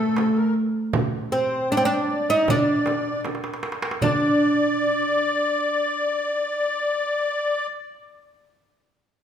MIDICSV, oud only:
0, 0, Header, 1, 2, 480
1, 0, Start_track
1, 0, Tempo, 769231
1, 587, Time_signature, 4, 2, 24, 8
1, 5761, End_track
2, 0, Start_track
2, 0, Title_t, "Oud"
2, 0, Program_c, 0, 24
2, 0, Note_on_c, 0, 57, 72
2, 328, Note_off_c, 0, 57, 0
2, 825, Note_on_c, 0, 60, 67
2, 1070, Note_off_c, 0, 60, 0
2, 1072, Note_on_c, 0, 62, 77
2, 1103, Note_off_c, 0, 62, 0
2, 1106, Note_on_c, 0, 60, 67
2, 1152, Note_off_c, 0, 60, 0
2, 1156, Note_on_c, 0, 62, 87
2, 1409, Note_off_c, 0, 62, 0
2, 1435, Note_on_c, 0, 63, 83
2, 1555, Note_off_c, 0, 63, 0
2, 1560, Note_on_c, 0, 62, 85
2, 2009, Note_off_c, 0, 62, 0
2, 2509, Note_on_c, 0, 62, 74
2, 4785, Note_off_c, 0, 62, 0
2, 5761, End_track
0, 0, End_of_file